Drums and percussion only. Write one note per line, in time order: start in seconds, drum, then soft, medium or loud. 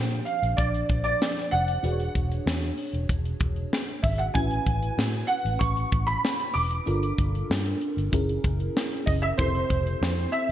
0.11 closed hi-hat medium
0.26 closed hi-hat medium
0.43 closed hi-hat soft
0.58 kick medium
0.58 closed hi-hat medium
0.75 closed hi-hat soft
0.89 kick medium
0.89 closed hi-hat medium
1.05 closed hi-hat soft
1.22 snare loud
1.37 snare soft
1.37 closed hi-hat medium
1.52 closed hi-hat medium
1.68 closed hi-hat medium
1.84 closed hi-hat medium
2.00 closed hi-hat soft
2.15 kick medium
2.15 closed hi-hat medium
2.32 closed hi-hat soft
2.47 snare loud
2.62 closed hi-hat soft
2.78 open hi-hat medium
2.94 closed hi-hat medium
3.09 kick medium
3.09 closed hi-hat medium
3.25 closed hi-hat soft
3.40 kick medium
3.40 closed hi-hat medium
3.56 closed hi-hat soft
3.73 snare medium
3.88 closed hi-hat medium
4.04 kick medium
4.04 open hi-hat medium
4.19 closed hi-hat medium
4.35 kick loud
4.35 closed hi-hat medium
4.51 closed hi-hat soft
4.67 kick medium
4.67 closed hi-hat medium
4.83 closed hi-hat soft
4.99 snare loud
5.13 closed hi-hat medium
5.29 closed hi-hat medium
5.46 closed hi-hat soft
5.61 kick medium
5.61 closed hi-hat medium
5.77 closed hi-hat soft
5.92 kick medium
5.92 closed hi-hat medium
6.08 closed hi-hat soft
6.25 snare loud
6.40 closed hi-hat medium
6.55 open hi-hat medium
6.71 closed hi-hat medium
6.87 closed hi-hat medium
7.03 closed hi-hat soft
7.18 kick medium
7.18 closed hi-hat medium
7.35 closed hi-hat soft
7.51 snare loud
7.66 closed hi-hat medium
7.81 closed hi-hat medium
7.98 closed hi-hat soft
8.13 kick medium
8.13 closed hi-hat loud
8.29 closed hi-hat soft
8.44 kick medium
8.44 closed hi-hat medium
8.60 closed hi-hat soft
8.77 snare loud
8.92 closed hi-hat medium
9.07 kick medium
9.07 open hi-hat medium
9.23 closed hi-hat medium
9.39 kick loud
9.39 closed hi-hat medium
9.55 closed hi-hat soft
9.70 kick medium
9.70 closed hi-hat medium
9.87 closed hi-hat soft
10.03 snare loud
10.17 closed hi-hat soft
10.33 closed hi-hat medium